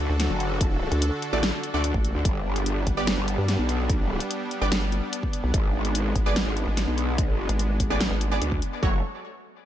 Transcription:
Already playing: supersaw synth D3 D4 F#4 A4
0.09 wobble bass D2
0.20 snare, closed hi-hat
0.30 wobble bass F#1
0.40 closed hi-hat
0.61 kick, closed hi-hat
0.92 wobble bass D2, closed hi-hat
1.02 closed hi-hat
1.22 closed hi-hat
1.33 wobble bass A1, synth stab A3 F#4 D5
1.43 snare, closed hi-hat
1.63 closed hi-hat
1.74 wobble bass D2, synth stab A3 F#4 D5
1.84 closed hi-hat
1.94 wobble bass A1, kick
2.05 closed hi-hat
2.15 wobble bass D2
2.25 wobble bass G1, supersaw synth G3 B3, kick, closed hi-hat
2.56 closed hi-hat
2.66 closed hi-hat
2.87 wobble bass G1, kick, closed hi-hat
2.97 synth stab B3 G4 D5
3.07 snare, closed hi-hat
3.18 wobble bass G1
3.28 closed hi-hat
3.38 wobble bass G2
3.48 snare, closed hi-hat
3.59 wobble bass B1
3.69 closed hi-hat
3.89 kick, closed hi-hat
4.20 closed hi-hat
4.31 closed hi-hat
4.51 closed hi-hat
4.61 wobble bass G1, synth stab B3 G4 D5
4.72 snare, closed hi-hat
4.92 closed hi-hat
5.13 closed hi-hat
5.23 kick
5.33 closed hi-hat
5.44 wobble bass B1
5.54 wobble bass G#1, supersaw synth G#3, kick, closed hi-hat
5.85 closed hi-hat
5.95 closed hi-hat
6.16 wobble bass G#1, kick, closed hi-hat
6.26 synth stab B3 G#4 D5
6.36 snare, closed hi-hat
6.46 wobble bass G#1
6.57 closed hi-hat
6.67 wobble bass G#1
6.77 snare, closed hi-hat
6.88 wobble bass B1
6.98 closed hi-hat
7.18 kick, closed hi-hat
7.49 wobble bass G#1, closed hi-hat
7.59 closed hi-hat
7.80 kick, closed hi-hat
7.90 wobble bass A1, synth stab B3 G#4 D5
8.00 snare, closed hi-hat
8.11 wobble bass G#1
8.21 closed hi-hat
8.31 synth stab B3 G#4 D5
8.42 wobble bass D2, closed hi-hat
8.52 kick
8.62 closed hi-hat
8.83 wobble bass F#1, supersaw synth F#3 F#4 A4 C#5, synth stab A3 F#4 C#5, kick

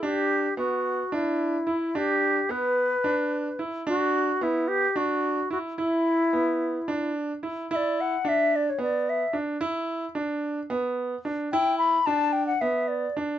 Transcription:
0.02 grand piano D4, flute G4
0.57 grand piano B3, flute F#4
1.12 grand piano D4, flute E4
1.67 grand piano E4
1.95 grand piano D4, flute G4
2.49 grand piano B3, flute B4
3.04 grand piano D4
3.59 grand piano E4
3.87 grand piano D4, flute F#4
4.41 grand piano B3, flute E4
4.68 flute G4
4.96 grand piano D4, flute F#4
5.50 grand piano E4, flute F#4
5.78 grand piano E4, flute E4
6.33 grand piano B3
6.88 grand piano D4
7.43 grand piano E4
7.71 grand piano E4, flute E5
7.76 flute D5
8.01 flute F#5
8.25 grand piano D4, flute E5
8.56 flute D5
8.70 flute C#5
8.79 grand piano B3, flute D5
9.09 flute E5
9.33 grand piano D4
9.61 grand piano E4
10.15 grand piano D4
10.70 grand piano B3
11.25 grand piano D4
11.52 grand piano E4, flute G5
11.78 flute B5
12.06 grand piano D4, flute A5
12.33 flute G5
12.47 flute F#5
12.61 grand piano B3, flute E5
12.88 flute D5
13.17 grand piano D4

